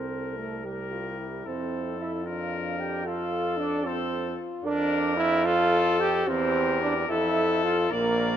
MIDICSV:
0, 0, Header, 1, 6, 480
1, 0, Start_track
1, 0, Key_signature, -1, "major"
1, 0, Tempo, 534283
1, 1318, Time_signature, 6, 3, 24, 8
1, 4657, Tempo, 548446
1, 7444, End_track
2, 0, Start_track
2, 0, Title_t, "Flugelhorn"
2, 0, Program_c, 0, 56
2, 0, Note_on_c, 0, 72, 58
2, 338, Note_on_c, 0, 69, 58
2, 352, Note_off_c, 0, 72, 0
2, 586, Note_on_c, 0, 67, 55
2, 599, Note_off_c, 0, 69, 0
2, 1312, Note_off_c, 0, 67, 0
2, 1318, Note_on_c, 0, 72, 69
2, 1787, Note_off_c, 0, 72, 0
2, 1800, Note_on_c, 0, 76, 72
2, 1907, Note_off_c, 0, 76, 0
2, 2044, Note_on_c, 0, 77, 72
2, 2515, Note_on_c, 0, 79, 92
2, 2528, Note_off_c, 0, 77, 0
2, 2762, Note_on_c, 0, 77, 81
2, 2775, Note_off_c, 0, 79, 0
2, 3232, Note_on_c, 0, 74, 88
2, 3246, Note_off_c, 0, 77, 0
2, 3477, Note_on_c, 0, 72, 84
2, 3491, Note_off_c, 0, 74, 0
2, 3943, Note_off_c, 0, 72, 0
2, 4175, Note_on_c, 0, 74, 98
2, 4659, Note_on_c, 0, 76, 97
2, 4672, Note_off_c, 0, 74, 0
2, 4896, Note_on_c, 0, 77, 110
2, 4909, Note_off_c, 0, 76, 0
2, 5362, Note_off_c, 0, 77, 0
2, 5368, Note_on_c, 0, 79, 100
2, 5477, Note_off_c, 0, 79, 0
2, 5606, Note_on_c, 0, 72, 101
2, 6085, Note_on_c, 0, 74, 96
2, 6098, Note_off_c, 0, 72, 0
2, 6330, Note_on_c, 0, 76, 101
2, 6343, Note_off_c, 0, 74, 0
2, 6804, Note_off_c, 0, 76, 0
2, 6811, Note_on_c, 0, 77, 100
2, 6919, Note_off_c, 0, 77, 0
2, 7052, Note_on_c, 0, 70, 90
2, 7444, Note_off_c, 0, 70, 0
2, 7444, End_track
3, 0, Start_track
3, 0, Title_t, "Trumpet"
3, 0, Program_c, 1, 56
3, 0, Note_on_c, 1, 70, 47
3, 571, Note_off_c, 1, 70, 0
3, 591, Note_on_c, 1, 70, 62
3, 1314, Note_on_c, 1, 69, 58
3, 1327, Note_off_c, 1, 70, 0
3, 2027, Note_off_c, 1, 69, 0
3, 2033, Note_on_c, 1, 70, 70
3, 2737, Note_off_c, 1, 70, 0
3, 2751, Note_on_c, 1, 69, 69
3, 3450, Note_off_c, 1, 69, 0
3, 3464, Note_on_c, 1, 69, 83
3, 3927, Note_off_c, 1, 69, 0
3, 4179, Note_on_c, 1, 70, 87
3, 4892, Note_on_c, 1, 69, 99
3, 4905, Note_off_c, 1, 70, 0
3, 5612, Note_off_c, 1, 69, 0
3, 5623, Note_on_c, 1, 70, 86
3, 6330, Note_on_c, 1, 69, 96
3, 6343, Note_off_c, 1, 70, 0
3, 7045, Note_on_c, 1, 74, 89
3, 7058, Note_off_c, 1, 69, 0
3, 7444, Note_off_c, 1, 74, 0
3, 7444, End_track
4, 0, Start_track
4, 0, Title_t, "French horn"
4, 0, Program_c, 2, 60
4, 0, Note_on_c, 2, 69, 61
4, 577, Note_on_c, 2, 67, 59
4, 591, Note_off_c, 2, 69, 0
4, 816, Note_off_c, 2, 67, 0
4, 822, Note_on_c, 2, 65, 61
4, 1073, Note_on_c, 2, 64, 67
4, 1086, Note_off_c, 2, 65, 0
4, 2026, Note_off_c, 2, 64, 0
4, 2031, Note_on_c, 2, 62, 68
4, 2742, Note_on_c, 2, 69, 85
4, 2755, Note_off_c, 2, 62, 0
4, 3459, Note_on_c, 2, 65, 84
4, 3472, Note_off_c, 2, 69, 0
4, 4179, Note_on_c, 2, 70, 101
4, 4193, Note_off_c, 2, 65, 0
4, 4652, Note_off_c, 2, 70, 0
4, 4894, Note_on_c, 2, 69, 101
4, 5579, Note_off_c, 2, 69, 0
4, 5602, Note_on_c, 2, 67, 103
4, 6307, Note_off_c, 2, 67, 0
4, 6321, Note_on_c, 2, 69, 102
4, 7039, Note_on_c, 2, 70, 105
4, 7052, Note_off_c, 2, 69, 0
4, 7444, Note_off_c, 2, 70, 0
4, 7444, End_track
5, 0, Start_track
5, 0, Title_t, "Trombone"
5, 0, Program_c, 3, 57
5, 0, Note_on_c, 3, 60, 70
5, 327, Note_on_c, 3, 57, 74
5, 340, Note_off_c, 3, 60, 0
5, 580, Note_on_c, 3, 55, 66
5, 594, Note_off_c, 3, 57, 0
5, 1303, Note_off_c, 3, 55, 0
5, 1309, Note_on_c, 3, 60, 87
5, 1782, Note_off_c, 3, 60, 0
5, 1788, Note_on_c, 3, 64, 88
5, 2022, Note_on_c, 3, 65, 79
5, 2036, Note_off_c, 3, 64, 0
5, 2497, Note_off_c, 3, 65, 0
5, 2503, Note_on_c, 3, 67, 87
5, 2740, Note_on_c, 3, 65, 101
5, 2754, Note_off_c, 3, 67, 0
5, 3209, Note_on_c, 3, 62, 101
5, 3222, Note_off_c, 3, 65, 0
5, 3459, Note_on_c, 3, 60, 96
5, 3473, Note_off_c, 3, 62, 0
5, 3934, Note_off_c, 3, 60, 0
5, 4174, Note_on_c, 3, 62, 118
5, 4621, Note_off_c, 3, 62, 0
5, 4645, Note_on_c, 3, 64, 125
5, 4895, Note_on_c, 3, 65, 127
5, 4908, Note_off_c, 3, 64, 0
5, 5376, Note_on_c, 3, 67, 123
5, 5389, Note_off_c, 3, 65, 0
5, 5620, Note_on_c, 3, 60, 118
5, 5634, Note_off_c, 3, 67, 0
5, 6079, Note_off_c, 3, 60, 0
5, 6085, Note_on_c, 3, 62, 111
5, 6193, Note_off_c, 3, 62, 0
5, 6336, Note_on_c, 3, 64, 123
5, 6802, Note_on_c, 3, 65, 114
5, 6815, Note_off_c, 3, 64, 0
5, 7053, Note_on_c, 3, 58, 118
5, 7066, Note_off_c, 3, 65, 0
5, 7444, Note_off_c, 3, 58, 0
5, 7444, End_track
6, 0, Start_track
6, 0, Title_t, "Bass trombone"
6, 0, Program_c, 4, 57
6, 0, Note_on_c, 4, 36, 52
6, 1304, Note_off_c, 4, 36, 0
6, 1309, Note_on_c, 4, 41, 65
6, 3897, Note_off_c, 4, 41, 0
6, 4170, Note_on_c, 4, 41, 90
6, 5574, Note_off_c, 4, 41, 0
6, 5607, Note_on_c, 4, 40, 94
6, 6310, Note_off_c, 4, 40, 0
6, 6320, Note_on_c, 4, 41, 88
6, 7028, Note_off_c, 4, 41, 0
6, 7036, Note_on_c, 4, 34, 92
6, 7444, Note_off_c, 4, 34, 0
6, 7444, End_track
0, 0, End_of_file